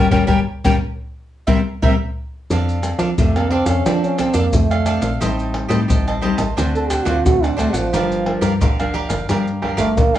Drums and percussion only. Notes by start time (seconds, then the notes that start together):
0.12 surdo
0.28 surdo
0.65 surdo
1.48 surdo
1.83 surdo
2.51 pandeiro, maracas, surdo
2.69 pandeiro, maracas
2.83 pandeiro, tamborim, maracas
2.99 pandeiro, maracas, surdo
3.18 pandeiro, maracas, surdo
3.36 pandeiro, tamborim, maracas
3.51 pandeiro
3.66 pandeiro, tamborim, maracas, surdo
3.86 pandeiro, tamborim, maracas, surdo
4.04 pandeiro, maracas
4.18 pandeiro, tamborim, maracas, surdo
4.34 pandeiro, maracas, surdo
4.53 pandeiro, maracas, surdo
4.71 pandeiro, tamborim, maracas
4.86 pandeiro, tamborim, maracas, surdo
5.02 pandeiro, maracas
5.21 pandeiro, maracas, surdo
5.39 pandeiro, maracas
5.54 pandeiro, tamborim
5.71 pandeiro, maracas, surdo
5.90 pandeiro, maracas, surdo
6.08 pandeiro, tamborim, maracas
6.22 pandeiro
6.38 pandeiro, tamborim, maracas, surdo
6.58 pandeiro, tamborim, maracas, surdo
6.75 pandeiro, maracas
6.90 pandeiro, tamborim, maracas, surdo
7.06 pandeiro, maracas, surdo
7.26 pandeiro, maracas, surdo
7.44 pandeiro, tamborim, maracas
7.59 pandeiro, tamborim, maracas, surdo
7.74 pandeiro, maracas
7.94 pandeiro, maracas, surdo
8.12 pandeiro, maracas
8.26 pandeiro, tamborim
8.42 pandeiro, maracas, surdo
8.61 pandeiro, maracas, surdo
8.79 pandeiro, tamborim, maracas
8.94 pandeiro
9.10 pandeiro, tamborim, maracas, surdo
9.29 pandeiro, tamborim, maracas, surdo
9.47 pandeiro, maracas
9.62 pandeiro, tamborim, surdo
9.78 pandeiro, maracas, surdo
9.97 pandeiro, maracas, surdo
10.15 pandeiro, tamborim, maracas